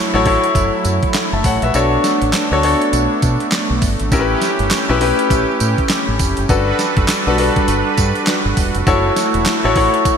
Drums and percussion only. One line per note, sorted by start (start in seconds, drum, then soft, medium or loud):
0.26 kick medium
0.26 open hi-hat medium
0.44 closed hi-hat medium
0.55 kick loud
0.55 closed hi-hat medium
0.55 tambourine medium
0.85 closed hi-hat medium
0.85 tambourine medium
1.03 kick loud
1.03 closed hi-hat medium
1.14 snare loud
1.14 clap medium
1.14 closed hi-hat medium
1.14 tambourine medium
1.44 kick medium
1.44 open hi-hat medium
1.44 tambourine medium
1.62 closed hi-hat medium
1.74 closed hi-hat medium
1.74 tambourine medium
2.04 snare medium
2.04 closed hi-hat medium
2.04 tambourine medium
2.22 closed hi-hat medium
2.33 snare loud
2.33 clap loud
2.33 closed hi-hat medium
2.33 tambourine loud
2.63 open hi-hat medium
2.82 closed hi-hat medium
2.93 closed hi-hat medium
2.93 tambourine medium
3.22 kick medium
3.22 closed hi-hat medium
3.22 tambourine medium
3.40 closed hi-hat soft
3.52 snare loud
3.52 clap medium
3.52 closed hi-hat medium
3.52 tambourine medium
3.82 kick medium
3.82 open hi-hat medium
3.82 tambourine medium
4.00 closed hi-hat medium
4.12 kick loud
4.12 closed hi-hat medium
4.12 tambourine medium
4.42 snare medium
4.42 closed hi-hat medium
4.42 tambourine medium
4.59 closed hi-hat medium
4.71 snare loud
4.71 clap loud
4.71 closed hi-hat medium
4.71 tambourine loud
5.01 open hi-hat medium
5.19 closed hi-hat medium
5.30 kick loud
5.30 closed hi-hat medium
5.30 tambourine medium
5.60 closed hi-hat medium
5.60 tambourine medium
5.78 kick medium
5.78 closed hi-hat medium
5.89 snare loud
5.89 clap medium
5.89 closed hi-hat medium
5.89 tambourine medium
6.19 kick medium
6.19 open hi-hat medium
6.19 tambourine medium
6.37 closed hi-hat medium
6.49 kick loud
6.49 closed hi-hat medium
6.49 tambourine medium
6.79 snare medium
6.79 closed hi-hat medium
6.79 tambourine medium
6.97 kick loud
6.97 closed hi-hat medium
7.08 snare loud
7.08 clap loud
7.08 closed hi-hat medium
7.08 tambourine loud
7.38 open hi-hat medium
7.56 kick loud
7.56 closed hi-hat medium
7.68 closed hi-hat medium
7.68 tambourine medium
7.98 kick medium
7.98 closed hi-hat medium
7.98 tambourine medium
8.15 closed hi-hat soft
8.27 snare loud
8.27 clap medium
8.27 closed hi-hat medium
8.27 tambourine medium
8.57 kick medium
8.57 open hi-hat medium
8.57 tambourine medium
8.75 closed hi-hat medium
8.87 kick loud
8.87 closed hi-hat medium
8.87 tambourine medium
9.16 snare medium
9.16 closed hi-hat medium
9.16 tambourine medium
9.34 closed hi-hat medium
9.46 snare loud
9.46 clap medium
9.46 closed hi-hat medium
9.46 tambourine loud
9.76 kick medium
9.76 open hi-hat medium
9.94 closed hi-hat medium
10.05 kick medium
10.05 closed hi-hat medium
10.05 tambourine medium